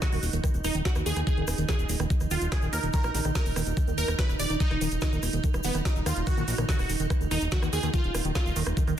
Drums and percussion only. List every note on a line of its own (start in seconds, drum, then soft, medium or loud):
0.02 kick loud
0.02 snare loud
0.02 closed hi-hat medium
0.02 shaker medium
0.12 cross-stick soft
0.12 open hi-hat medium
0.12 shaker soft
0.23 open hi-hat loud
0.23 shaker medium
0.33 closed hi-hat medium
0.33 shaker soft
0.44 kick loud
0.44 cross-stick medium
0.44 closed hi-hat medium
0.44 shaker medium
0.54 closed hi-hat soft
0.54 shaker soft
0.64 cross-stick soft
0.64 open hi-hat loud
0.64 shaker medium
0.74 closed hi-hat medium
0.74 shaker soft
0.85 kick loud
0.85 snare loud
0.85 closed hi-hat medium
0.85 shaker medium
0.95 cross-stick medium
0.95 closed hi-hat soft
0.95 shaker soft
1.06 open hi-hat loud
1.06 shaker loud
1.16 cross-stick soft
1.16 closed hi-hat medium
1.16 shaker soft
1.27 kick loud
1.27 closed hi-hat medium
1.27 shaker soft
1.37 closed hi-hat soft
1.47 cross-stick medium
1.47 open hi-hat loud
1.47 shaker loud
1.58 closed hi-hat medium
1.58 shaker soft
1.69 kick loud
1.69 cross-stick soft
1.69 snare loud
1.69 closed hi-hat medium
1.69 shaker medium
1.79 closed hi-hat soft
1.79 shaker soft
1.89 open hi-hat loud
1.89 shaker loud
2.00 cross-stick medium
2.00 closed hi-hat medium
2.00 shaker soft
2.10 kick loud
2.10 closed hi-hat soft
2.10 shaker medium
2.20 cross-stick soft
2.20 closed hi-hat soft
2.20 shaker soft
2.31 open hi-hat loud
2.31 shaker medium
2.42 closed hi-hat medium
2.42 shaker soft
2.52 kick loud
2.52 cross-stick medium
2.52 snare loud
2.52 closed hi-hat medium
2.52 shaker medium
2.62 closed hi-hat soft
2.62 shaker soft
2.73 cross-stick soft
2.73 open hi-hat loud
2.73 shaker loud
2.83 closed hi-hat medium
2.83 shaker soft
2.93 kick loud
2.93 closed hi-hat soft
2.93 shaker medium
3.03 cross-stick medium
3.03 closed hi-hat soft
3.03 shaker soft
3.15 open hi-hat loud
3.15 shaker medium
3.25 cross-stick soft
3.25 closed hi-hat medium
3.25 shaker soft
3.35 kick loud
3.35 snare loud
3.35 closed hi-hat medium
3.35 shaker medium
3.46 open hi-hat medium
3.46 shaker soft
3.56 cross-stick medium
3.56 open hi-hat loud
3.56 shaker loud
3.67 closed hi-hat medium
3.67 shaker soft
3.77 kick loud
3.77 cross-stick soft
3.77 closed hi-hat soft
3.77 shaker medium
3.87 closed hi-hat soft
3.87 shaker soft
3.98 open hi-hat loud
3.98 shaker loud
4.08 cross-stick medium
4.08 closed hi-hat soft
4.08 shaker soft
4.19 kick loud
4.19 snare loud
4.19 closed hi-hat medium
4.19 shaker medium
4.29 cross-stick soft
4.29 closed hi-hat soft
4.29 shaker soft
4.40 open hi-hat loud
4.40 shaker loud
4.50 closed hi-hat soft
4.50 shaker soft
4.60 kick loud
4.60 closed hi-hat medium
4.60 shaker soft
4.71 cross-stick soft
4.71 closed hi-hat soft
4.81 open hi-hat loud
4.81 shaker medium
4.92 closed hi-hat medium
4.92 shaker soft
5.01 kick loud
5.01 cross-stick medium
5.01 snare loud
5.01 closed hi-hat medium
5.01 shaker soft
5.12 closed hi-hat soft
5.12 shaker soft
5.23 cross-stick soft
5.23 open hi-hat loud
5.23 shaker medium
5.33 closed hi-hat medium
5.33 shaker soft
5.44 kick loud
5.44 closed hi-hat medium
5.44 shaker soft
5.54 cross-stick medium
5.54 closed hi-hat soft
5.54 shaker soft
5.63 open hi-hat loud
5.63 shaker loud
5.75 cross-stick soft
5.75 closed hi-hat medium
5.75 shaker soft
5.85 kick loud
5.85 snare loud
5.85 closed hi-hat medium
5.85 shaker medium
5.96 closed hi-hat soft
5.96 shaker soft
6.06 cross-stick medium
6.06 open hi-hat loud
6.06 shaker loud
6.16 closed hi-hat soft
6.16 shaker soft
6.27 kick loud
6.27 cross-stick soft
6.27 closed hi-hat medium
6.27 shaker soft
6.37 closed hi-hat soft
6.37 shaker soft
6.48 open hi-hat loud
6.48 shaker medium
6.58 cross-stick medium
6.58 closed hi-hat medium
6.58 shaker soft
6.69 kick loud
6.69 snare loud
6.69 closed hi-hat medium
6.69 shaker soft
6.79 cross-stick soft
6.79 open hi-hat medium
6.79 shaker soft
6.89 open hi-hat loud
6.89 shaker medium
7.00 closed hi-hat medium
7.00 shaker soft
7.10 kick loud
7.10 cross-stick medium
7.10 closed hi-hat medium
7.10 shaker soft
7.21 closed hi-hat soft
7.21 shaker soft
7.31 cross-stick soft
7.31 open hi-hat loud
7.31 shaker medium
7.41 closed hi-hat medium
7.41 shaker soft
7.51 kick loud
7.51 snare loud
7.51 closed hi-hat medium
7.51 shaker medium
7.62 cross-stick medium
7.62 closed hi-hat soft
7.62 shaker soft
7.73 open hi-hat loud
7.73 shaker medium
7.83 cross-stick soft
7.83 closed hi-hat medium
7.83 shaker soft
7.94 kick loud
7.94 closed hi-hat medium
7.94 shaker soft
8.04 closed hi-hat soft
8.14 cross-stick medium
8.14 open hi-hat loud
8.14 shaker medium
8.25 closed hi-hat medium
8.25 shaker soft
8.35 kick loud
8.35 cross-stick soft
8.35 snare loud
8.35 closed hi-hat medium
8.35 shaker soft
8.46 closed hi-hat soft
8.46 shaker soft
8.56 open hi-hat loud
8.56 shaker medium
8.67 cross-stick medium
8.67 closed hi-hat medium
8.67 shaker soft
8.77 kick loud
8.77 closed hi-hat medium
8.77 shaker medium
8.87 cross-stick soft
8.87 closed hi-hat soft
8.87 shaker soft